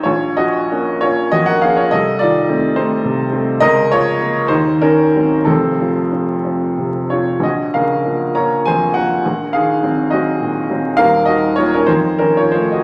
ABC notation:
X:1
M:6/8
L:1/16
Q:3/8=67
K:Bbm
V:1 name="Grand piano"
[Fd]2 [Ge]4 [Fd]2 [Ge] [Bg] [Af] [Fd] | [=Ae]2 [F=d]4 [Ec]2 z4 | [Be]2 [Fd]4 [Ec]2 [DB]4 | [C=A]6 z4 [Fd]2 |
[Ge]2 [Bf]4 [db]2 [ca]2 [Bg]2- | [Bg]2 [Af]4 [Ge]4 z2 | [Bf]2 [Ge]2 [Fd] [DB] [Ec]2 [DB] [Fd] [Ec] [Ge] |]
V:2 name="Grand piano" clef=bass
B,,,2 F,2 [B,D]2 [B,D]2 F,,2 [B,D]2 | C,,2 E,2 [=A,C]2 [A,C]2 C,2 [A,C]2 | D,,2 F,2 B,2 E,,2 E,2 [G,C]2 | [F,,,F,,]2 F,2 [F,C]2 [F,C]2 C,2 [F,C]2 |
B,,,2 D,2 [F,B,]2 [F,B,]2 F,,2 [F,B,]2 | B,,,2 E,2 [G,C]2 [G,C]2 B,,2 [G,C]2 | [E,,,E,,]2 E,2 [G,B,]2 F,,2 E,2 [F,=A,]2 |]